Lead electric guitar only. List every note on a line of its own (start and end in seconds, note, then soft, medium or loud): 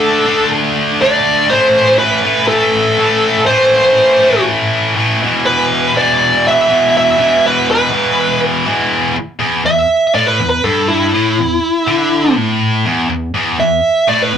0.00 0.48 A4 medium
1.02 1.52 D5 loud
1.50 1.99 C5 loud
1.99 2.47 B4 loud
2.48 3.43 A4 medium
3.46 4.42 C5 medium
5.46 5.97 B4 loud
5.97 6.47 D5 loud
6.48 6.96 E5 loud
6.97 7.46 E5 loud
7.46 7.68 B4 loud
7.71 8.39 B4 medium
9.66 10.13 E5 loud
10.15 10.26 D5 medium
10.26 10.49 B4 medium
10.50 10.64 B4 medium
10.64 10.88 A4 medium
10.88 12.32 E4 loud
13.60 14.08 E5 loud
14.09 14.22 D5 loud
14.22 14.38 B4 medium